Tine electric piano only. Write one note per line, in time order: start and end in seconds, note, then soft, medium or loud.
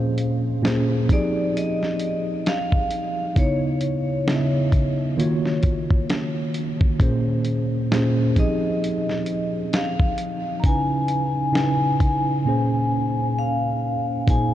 0.00 0.31 A#2 medium
0.00 0.32 A#3 medium
0.00 0.32 C#4 medium
0.00 0.33 G#4 medium
0.00 0.33 C5 medium
0.62 1.08 A#2 medium
0.62 1.09 A#3 medium
0.62 1.09 C#4 medium
0.62 1.10 G#4 medium
0.62 1.10 C5 medium
1.10 2.57 F3 medium
1.10 2.57 C4 medium
1.10 2.57 D#4 medium
1.10 2.58 G4 medium
1.10 2.58 G#4 medium
3.35 3.95 C#3 medium
3.35 3.95 B3 medium
3.35 3.95 D#4 medium
3.35 3.96 E4 medium
3.35 3.96 C#5 medium
4.26 5.18 C#3 medium
4.26 5.18 B3 medium
4.26 5.19 E4 medium
4.26 4.36 D#5 medium
4.36 5.23 E5 medium
5.17 6.65 D#3 medium
5.17 6.65 A#3 medium
5.17 6.66 F4 medium
5.17 6.66 F#4 medium
5.17 6.67 C#5 medium
6.99 7.58 A#2 medium
6.99 7.58 A#3 medium
6.99 7.59 C#4 medium
6.99 7.59 G#4 medium
6.99 7.60 C5 medium
7.91 8.36 A#2 medium
7.91 8.37 A#3 medium
7.91 8.37 C#4 medium
7.91 8.37 G#4 medium
7.91 8.38 C5 medium
8.36 9.83 F3 medium
8.36 9.84 C4 medium
8.36 9.84 D#4 medium
8.36 9.84 G4 medium
8.36 9.85 G#4 medium
10.65 11.23 C#3 medium
10.65 11.24 C#4 medium
10.65 11.24 D#4 medium
10.65 11.24 E4 medium
10.65 11.25 B4 medium
11.52 12.44 C#3 medium
11.52 12.45 C#4 medium
11.52 12.45 D#4 medium
11.52 12.46 E4 medium
11.52 12.46 B4 medium
12.45 13.92 A#2 medium
12.45 13.93 A#3 medium
12.45 13.93 C#4 medium
12.45 13.94 G#4 medium
12.45 13.94 C5 medium
14.27 14.54 A#2 medium
14.27 14.54 A#3 medium
14.27 14.54 D#4 medium
14.27 14.54 G#4 medium
14.27 14.54 C5 medium